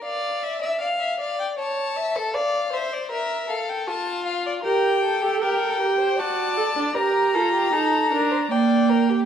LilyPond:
<<
  \new Staff \with { instrumentName = "Violin" } { \time 3/4 \key g \minor \tempo 4 = 78 f''8 e''16 d''16 d''16 e''16 f''16 g''16 a''4 | f''8 e''16 d''16 e''8 f''16 g''16 a''8 f''16 d''16 | g''4 g''4 a''4 | bes''2 g''4 | }
  \new Staff \with { instrumentName = "Violin" } { \time 3/4 \key g \minor d''8. e''16 f''8 d''8 cis''8 e''16 a'16 | d''8 c''8 bes'8 a'8 f'4 | bes'8 a'16 g'16 g'16 a'16 bes'16 c''16 d''4 | bes'8 a'16 g'16 a'8 bes'16 c''16 d''8 bes'16 g'16 | }
  \new Staff \with { instrumentName = "Viola" } { \time 3/4 \key g \minor r2. | r2. | g'8. a'16 bes'8 g'8 fis'8 a'16 d'16 | g'8 f'8 ees'8 d'8 bes4 | }
>>